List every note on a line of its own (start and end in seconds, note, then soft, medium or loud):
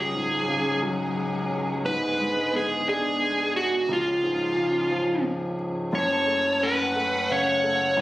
0.00 1.81 C#2 soft
0.00 1.81 F#3 medium
0.00 5.90 G#3 medium
0.00 1.83 C#4 medium
0.00 0.81 G#4 medium
0.00 1.83 G#4 medium
0.13 1.47 G#2 soft
0.48 1.81 C#3 soft
0.82 1.82 F#3 soft
1.84 3.86 G#2 soft
1.84 3.87 D3 medium
1.84 3.87 B3 medium
1.84 3.87 G#4 medium
1.84 2.56 B4 medium
2.19 3.52 G#3 soft
2.53 3.85 B3 soft
2.53 2.88 G#4 medium
2.87 3.86 D4 soft
2.87 3.52 G#4 medium
3.56 3.91 F#4 medium
3.88 5.89 C#2 soft
3.88 5.91 F3 medium
3.88 5.91 C#4 medium
3.88 5.91 G#4 medium
3.93 5.23 F4 medium
4.23 5.55 G#2 soft
4.57 5.89 C#3 soft
4.91 5.90 F3 soft
5.93 7.93 F#1 medium
5.93 7.93 F#2 medium
5.93 6.64 C#5 medium
5.93 6.58 A5 medium
6.27 6.94 A3 soft
6.61 7.93 C#4 medium
6.61 7.32 B4 medium
6.61 7.97 F#5 medium
6.96 7.63 A3 medium
7.30 7.96 C#3 medium
7.30 8.01 C#5 medium
7.64 7.97 A3 medium
7.96 8.01 G#1 medium
7.96 8.01 G#2 medium
7.96 8.01 G#5 loud